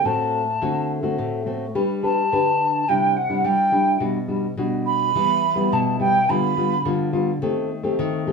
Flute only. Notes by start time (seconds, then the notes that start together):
0.05 A5
2.03 A5
2.88 G5
3.16 F#5
3.44 G5
4.86 B5
5.73 A5
5.99 G5
6.29 B5